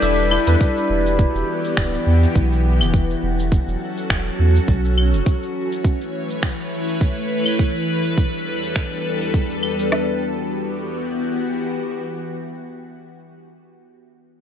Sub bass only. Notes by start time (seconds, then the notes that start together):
0.02 E1
0.47 E2
0.90 E1
1.35 E1
1.77 D1
2.06 E2
2.36 B1
2.81 E1
3.23 E1
3.67 E1
4.10 E1
4.39 E2
4.68 B1
5.13 E1